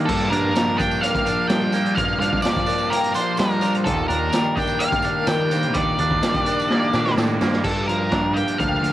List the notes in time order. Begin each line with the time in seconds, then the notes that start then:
Already playing: G3 A#3 D4 G4
0.06 G2 F4 A4, kick, crash, tambourine
0.20 tambourine
0.30 G2 F3 D4 A#4, closed hi-hat
0.55 F3 A#3 G4, snare, closed hi-hat, tambourine
0.78 D4 A#4 G5, kick, closed hi-hat, tambourine
0.91 tambourine
1.01 A#3 G4 F5, closed hi-hat
1.15 kick, closed hi-hat
1.26 F3 D4 A#4, closed hi-hat, tambourine
1.47 F3 G3 A#3 G5, snare, closed hi-hat, tambourine
1.61 tambourine
1.72 A#3 D4 C5, closed hi-hat, tambourine
1.86 closed hi-hat
1.95 G2 F4 F5, kick, closed hi-hat, tambourine
2.08 tambourine
2.20 G2 F3 D4 F5, closed hi-hat
2.33 kick
2.42 F3 A#3 G4 D5, snare, closed hi-hat, tambourine
2.56 kick, closed hi-hat
2.66 D4 A#4, closed hi-hat, tambourine
2.78 tambourine
2.90 A#3 G4 A#4, closed hi-hat, tambourine
3.04 closed hi-hat
3.14 F3 D4 A#4 C5, closed hi-hat, tambourine
3.37 F3 G3 A#3 A#4, snare, closed hi-hat, tambourine
3.51 closed hi-hat
3.61 A#3 D4 C5, closed hi-hat, tambourine
3.74 closed hi-hat, tambourine
3.84 D#2 D#3 F4 A4, kick, closed hi-hat, tambourine
3.97 tambourine
4.08 D#2 D#3 D4 A#4, closed hi-hat
4.32 G3 A#3 G4, snare, closed hi-hat, tambourine
4.55 D4 A#4 G5, kick, closed hi-hat, tambourine
4.67 tambourine
4.79 A#3 G4 F5, closed hi-hat
4.92 kick, closed hi-hat
5.02 D#3 D4 A#4, closed hi-hat, tambourine
5.27 D#3 G3 A#3 G5, snare, closed hi-hat, tambourine
5.39 tambourine
5.51 A#3 D4 C5, closed hi-hat, tambourine
5.62 closed hi-hat, tambourine
5.74 D#2 D#3 F4 D5, kick, closed hi-hat, tambourine
5.98 D#2 D#3 D4, closed hi-hat, tambourine
6.11 kick, tambourine
6.21 G3 A#3 G4, snare, closed hi-hat, tambourine
6.34 kick, closed hi-hat
6.46 D4 A#4, closed hi-hat, tambourine
6.59 tambourine
6.69 A#3 G4, snare
6.82 tambourine
6.93 A#2 D#3 D4 A#4, snare, tambourine
7.05 snare, tambourine
7.17 A2 G3 A#3, snare, tambourine
7.40 G2 A#3 D4 C5, snare, tambourine
7.52 snare, tambourine
7.63 G2 F4 A4, kick, crash
7.88 F3 A#4, closed hi-hat
8.11 D4 G4, kick, snare, closed hi-hat
8.34 A#3 G4 A#4 G5, closed hi-hat
8.47 closed hi-hat
8.59 D2 F3 D4 G4 F5, kick, closed hi-hat
8.82 D2 D3 F3 A#4, closed hi-hat